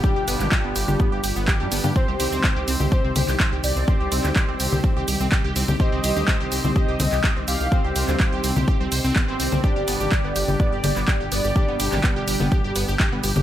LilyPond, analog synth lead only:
\new Staff \with { instrumentName = "Analog synth lead" } { \time 4/4 \key c \minor \tempo 4 = 125 g'4 r2. | c''2 c''4. d''8~ | d''4 r2. | ees''2 ees''4. f''8~ |
f''4 r2. | d''2 d''4. d''8~ | d''4 r2. | }